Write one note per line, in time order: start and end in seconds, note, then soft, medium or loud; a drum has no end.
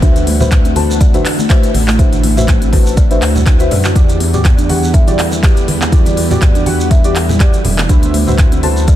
0.00 1.22 D2 loud
0.00 3.92 D3 medium
0.00 3.92 A3 medium
0.00 0.10 D4 loud
0.00 3.92 E4 medium
0.00 0.37 F#4 medium
0.00 0.37 B4 medium
0.00 0.37 C5 medium
0.00 0.37 E5 medium
0.00 5.89 F#5 medium
0.00 kick loud
0.00 closed hi-hat medium
0.00 high conga medium
0.00 shekere medium
0.16 0.22 D4 medium
0.16 closed hi-hat soft
0.16 high conga medium
0.16 shekere soft
0.27 0.34 A3 medium
0.27 open hi-hat loud
0.27 muted conga medium
0.40 0.73 F#4 loud
0.40 0.73 B4 medium
0.40 0.73 C5 medium
0.40 0.73 E5 loud
0.40 mid tom medium
0.40 high conga medium
0.40 low conga medium
0.40 shekere medium
0.51 kick loud
0.51 clap loud
0.51 closed hi-hat medium
0.51 mid tom medium
0.51 shekere medium
0.65 0.71 C4 medium
0.65 closed hi-hat soft
0.65 shekere soft
0.76 0.97 F#4 medium
0.76 0.88 A4 medium
0.76 0.97 B4 medium
0.76 0.97 C5 medium
0.76 0.97 A5 loud
0.76 open hi-hat medium
0.76 muted conga soft
0.76 high conga loud
0.91 shekere medium
1.00 1.08 D5 loud
1.00 kick loud
1.00 closed hi-hat medium
1.00 muted conga soft
1.00 shekere medium
1.14 1.20 D4 medium
1.14 1.26 F#4 loud
1.14 1.26 B4 medium
1.14 1.26 C5 medium
1.14 1.26 E5 loud
1.14 closed hi-hat soft
1.14 low conga medium
1.14 shekere soft
1.25 1.37 F#4 medium
1.25 clap medium
1.25 open hi-hat medium
1.39 1.49 A3 medium
1.39 muted conga medium
1.39 shekere medium
1.50 1.71 F#4 medium
1.50 1.71 B4 medium
1.50 1.71 C5 medium
1.50 1.71 E5 loud
1.50 kick loud
1.50 clap loud
1.50 closed hi-hat medium
1.50 shekere medium
1.63 closed hi-hat soft
1.63 muted conga soft
1.63 shekere soft
1.74 3.19 A1 loud
1.74 open hi-hat medium
1.74 high conga loud
1.88 1.98 A3 medium
1.88 clap loud
1.88 muted conga medium
1.88 shekere medium
1.99 2.06 D4 loud
1.99 2.34 F#4 medium
1.99 2.34 B4 medium
1.99 2.34 C5 medium
1.99 2.34 E5 medium
1.99 kick loud
1.99 closed hi-hat medium
1.99 high conga medium
1.99 shekere medium
2.13 2.19 D4 medium
2.13 closed hi-hat soft
2.13 high conga medium
2.13 shekere soft
2.23 2.31 A3 medium
2.23 open hi-hat medium
2.23 muted conga medium
2.37 2.70 F#4 loud
2.37 2.70 B4 medium
2.37 2.70 C5 medium
2.37 2.70 E5 loud
2.37 mid tom medium
2.37 high conga medium
2.37 low conga medium
2.37 shekere medium
2.48 kick loud
2.48 clap loud
2.48 closed hi-hat medium
2.48 mid tom medium
2.48 muted conga soft
2.48 shekere medium
2.62 2.68 C4 medium
2.62 closed hi-hat soft
2.62 shekere soft
2.73 2.94 F#4 medium
2.73 2.85 A4 medium
2.73 2.94 B4 medium
2.73 2.94 C5 medium
2.73 2.94 A5 loud
2.73 kick medium
2.73 open hi-hat medium
2.73 muted conga medium
2.73 high conga loud
2.86 shekere medium
2.97 3.05 D5 loud
2.97 kick loud
2.97 closed hi-hat medium
2.97 muted conga soft
2.97 shekere medium
3.11 3.17 D4 medium
3.11 3.23 F#4 loud
3.11 3.23 B4 medium
3.11 3.23 C5 medium
3.11 3.23 E5 loud
3.11 closed hi-hat soft
3.11 shekere soft
3.22 3.68 D2 medium
3.22 3.34 C5 medium
3.22 clap medium
3.22 open hi-hat medium
3.35 3.42 F#4 medium
3.35 muted conga soft
3.35 low conga medium
3.35 shekere medium
3.46 3.59 D4 medium
3.46 kick loud
3.46 clap loud
3.46 closed hi-hat medium
3.46 shekere medium
3.59 3.93 F#4 medium
3.59 3.93 B4 medium
3.59 3.93 C5 medium
3.59 3.93 E5 loud
3.59 closed hi-hat soft
3.59 muted conga soft
3.59 shekere soft
3.71 3.92 F#2 medium
3.71 3.78 D5 medium
3.71 open hi-hat medium
3.71 low conga loud
3.84 3.91 F#4 medium
3.84 clap loud
3.84 muted conga medium
3.84 shekere medium
3.95 5.15 E2 loud
3.95 7.85 E3 medium
3.95 7.85 G3 medium
3.95 7.85 B3 medium
3.95 4.03 E4 loud
3.95 4.31 F#4 medium
3.95 4.31 G4 medium
3.95 4.31 D5 medium
3.95 kick loud
3.95 closed hi-hat medium
3.95 high conga medium
3.95 shekere medium
4.09 4.15 E4 medium
4.09 closed hi-hat soft
4.09 high conga medium
4.09 shekere soft
4.20 4.28 B3 medium
4.20 open hi-hat medium
4.20 muted conga medium
4.34 4.67 F#4 loud
4.34 4.67 G4 medium
4.34 4.67 D5 loud
4.34 mid tom medium
4.34 high conga medium
4.34 low conga medium
4.34 shekere medium
4.44 kick loud
4.44 clap loud
4.44 closed hi-hat medium
4.44 mid tom loud
4.44 muted conga soft
4.44 shekere medium
4.58 4.64 D4 medium
4.58 closed hi-hat soft
4.58 shekere soft
4.69 4.91 F#4 medium
4.69 4.91 G4 medium
4.69 4.82 B4 medium
4.69 4.91 F#5 loud
4.69 open hi-hat medium
4.69 muted conga medium
4.69 high conga loud
4.83 shekere medium
4.94 5.01 E5 loud
4.94 kick loud
4.94 closed hi-hat medium
4.94 muted conga soft
4.94 shekere medium
5.07 5.14 E4 medium
5.07 5.20 F#4 loud
5.07 5.20 G4 medium
5.07 5.20 D5 loud
5.07 closed hi-hat soft
5.07 low conga medium
5.07 shekere soft
5.19 7.50 E2 medium
5.19 5.31 A4 medium
5.19 clap medium
5.19 open hi-hat medium
5.31 5.42 B3 medium
5.31 muted conga medium
5.31 shekere medium
5.43 5.65 F#4 medium
5.43 5.65 G4 medium
5.43 5.65 D5 loud
5.43 kick loud
5.43 clap loud
5.43 closed hi-hat medium
5.43 shekere medium
5.57 closed hi-hat soft
5.57 muted conga soft
5.57 shekere soft
5.68 open hi-hat medium
5.68 high conga medium
5.81 5.91 B3 medium
5.81 clap medium
5.81 muted conga medium
5.81 shekere medium
5.92 6.00 E4 loud
5.92 8.96 E4 medium
5.92 6.27 F#4 medium
5.92 6.27 G4 medium
5.92 6.27 D5 medium
5.92 kick loud
5.92 closed hi-hat medium
5.92 high conga medium
5.92 shekere medium
6.05 6.12 E4 medium
6.05 closed hi-hat soft
6.05 high conga medium
6.05 shekere soft
6.17 6.24 B3 medium
6.17 open hi-hat medium
6.17 muted conga medium
6.31 6.64 F#4 loud
6.31 6.64 G4 medium
6.31 6.64 D5 loud
6.31 mid tom medium
6.31 high conga medium
6.31 low conga medium
6.31 shekere medium
6.42 kick loud
6.42 clap loud
6.42 closed hi-hat medium
6.42 mid tom loud
6.42 shekere medium
6.55 6.61 D4 medium
6.55 closed hi-hat soft
6.55 shekere soft
6.66 6.88 F#4 medium
6.66 6.88 G4 medium
6.66 6.79 B4 medium
6.66 6.88 F#5 loud
6.66 open hi-hat medium
6.66 muted conga medium
6.66 high conga medium
6.80 shekere medium
6.91 6.98 E5 loud
6.91 kick loud
6.91 closed hi-hat medium
6.91 muted conga soft
6.91 shekere medium
7.04 7.10 E4 medium
7.04 7.16 F#4 loud
7.04 7.16 G4 medium
7.04 7.17 D5 loud
7.04 closed hi-hat soft
7.04 shekere soft
7.16 7.28 A4 medium
7.16 clap medium
7.16 open hi-hat medium
7.29 7.39 B3 medium
7.29 muted conga medium
7.29 low conga medium
7.29 shekere medium
7.40 7.61 F#4 medium
7.40 7.62 G4 medium
7.40 7.62 D5 loud
7.40 kick loud
7.40 clap loud
7.40 closed hi-hat medium
7.40 shekere medium
7.53 closed hi-hat soft
7.53 muted conga soft
7.53 shekere soft
7.64 7.85 E1 loud
7.64 open hi-hat medium
7.64 low conga loud
7.78 7.88 B3 medium
7.78 clap medium
7.78 muted conga medium
7.78 shekere medium
7.89 8.96 D2 loud
7.89 8.96 D3 medium
7.89 8.96 A3 medium
7.89 7.97 D4 loud
7.89 8.24 F#4 medium
7.89 8.24 B4 medium
7.89 8.24 C5 medium
7.89 8.24 E5 medium
7.89 8.96 F#5 medium
7.89 kick loud
7.89 closed hi-hat medium
7.89 high conga medium
7.89 shekere medium
8.02 8.09 D4 medium
8.02 closed hi-hat soft
8.02 high conga medium
8.02 shekere soft
8.14 8.21 A3 medium
8.14 open hi-hat medium
8.14 muted conga medium
8.27 8.60 F#4 medium
8.27 8.60 B4 medium
8.27 8.60 C5 medium
8.27 8.60 E5 loud
8.27 mid tom medium
8.27 high conga medium
8.27 low conga medium
8.27 shekere medium
8.38 kick loud
8.38 clap loud
8.38 closed hi-hat medium
8.38 mid tom loud
8.38 muted conga soft
8.38 shekere medium
8.52 8.58 C4 medium
8.52 closed hi-hat soft
8.52 shekere soft
8.63 8.85 F#4 medium
8.63 8.75 A4 medium
8.63 8.84 B4 medium
8.63 8.85 C5 medium
8.63 8.84 A5 medium
8.63 open hi-hat medium
8.63 muted conga medium
8.63 high conga medium
8.77 shekere medium
8.88 8.95 D5 loud
8.88 kick loud
8.88 closed hi-hat medium
8.88 muted conga soft
8.88 shekere medium